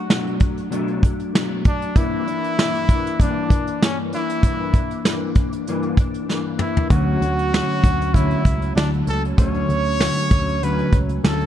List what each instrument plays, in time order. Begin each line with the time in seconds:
Already playing: trumpet F#4
0.09 clean electric guitar B2 F#3 A3 D4, snare
0.27 closed hi-hat
0.39 clean electric guitar F#3 A3 D4, kick, closed hi-hat
0.58 closed hi-hat
0.70 clean electric guitar B2 F#3 A3 D4, closed hi-hat
0.88 closed hi-hat
1.03 clean electric guitar F#3 A3 D4, kick, closed hi-hat
1.20 closed hi-hat
1.34 clean electric guitar B2 F#3 A3 D4, snare
1.65 clean electric guitar F#3 A3 D4, trumpet D4, kick, closed hi-hat
1.82 closed hi-hat
1.96 clean electric guitar G2 E3 A#3 D4, trumpet E4, kick, closed hi-hat
2.28 clean electric guitar E3 A#3 D4, closed hi-hat
2.44 closed hi-hat
2.59 clean electric guitar G2 E3 A#3 D4, snare
2.75 closed hi-hat
2.89 clean electric guitar E3 A#3 D4, kick, closed hi-hat
3.07 closed hi-hat
3.20 clean electric guitar G2 E3 A#3, trumpet D4, kick, closed hi-hat
3.24 clean electric guitar D4
3.50 clean electric guitar E3 A#3 D4, kick, closed hi-hat
3.67 closed hi-hat
3.82 clean electric guitar G2 E3 A#3, trumpet C#4, snare
4.13 clean electric guitar E3 A#3 D4, trumpet E4, closed hi-hat
4.30 closed hi-hat
4.43 clean electric guitar G2 E3 A#3 D4, kick, closed hi-hat
4.74 clean electric guitar A#3 D4, kick, closed hi-hat
4.78 clean electric guitar E3
4.91 closed hi-hat
5.05 clean electric guitar G2 E3 A#3 D4, snare
5.35 clean electric guitar E3 A#3 D4, kick, closed hi-hat
5.53 closed hi-hat
5.67 clean electric guitar G2 E3 A#3 D4, closed hi-hat
5.83 closed hi-hat
5.97 clean electric guitar E3 A#3 D4, kick, closed hi-hat
6.14 closed hi-hat
6.28 clean electric guitar G2 E3 A#3 D4, snare
6.59 clean electric guitar E3 A#3 D4, trumpet E4, mid tom
6.77 floor tom
6.90 picked electric bass D2, clean electric guitar D3 F#3 A3 C#4, trumpet F#4, kick, closed hi-hat
7.21 picked electric bass D2, clean electric guitar F#3 A3 C#4, closed hi-hat
7.39 closed hi-hat
7.53 clean electric guitar D3 F#3 A3 C#4, snare
7.83 picked electric bass D2, clean electric guitar F#3 A3 C#4, kick, closed hi-hat
8.01 closed hi-hat
8.14 clean electric guitar D3 F#3 A3 C#4, trumpet E4, kick, closed hi-hat
8.31 closed hi-hat
8.45 picked electric bass C#2, clean electric guitar F#3 A3 C#4, kick, closed hi-hat
8.62 closed hi-hat
8.76 picked electric bass D2, clean electric guitar D3 F#3 A3, trumpet D4, snare
8.93 closed hi-hat
9.06 picked electric bass C#2, clean electric guitar F#3 A3 C#4, trumpet A4, closed hi-hat
9.25 closed hi-hat
9.38 picked electric bass D2, clean electric guitar D3 F#3 A3 C#4, trumpet C#5, kick, closed hi-hat
9.55 closed hi-hat
9.69 picked electric bass D2, clean electric guitar F#3 A3 C#4, closed hi-hat
9.86 closed hi-hat
10.00 clean electric guitar D3 F#3 A3 C#4, snare
10.17 closed hi-hat
10.31 picked electric bass D2, clean electric guitar F#3 A3 C#4, kick, closed hi-hat
10.49 closed hi-hat
10.62 clean electric guitar D3 F#3 A3 C#4, trumpet B4, closed hi-hat
10.78 closed hi-hat
10.93 picked electric bass C#2, clean electric guitar F#3 A3 C#4, kick, closed hi-hat
11.09 closed hi-hat
11.23 picked electric bass D2, clean electric guitar D3 F#3 A3 C#4, trumpet A4, snare
11.41 closed hi-hat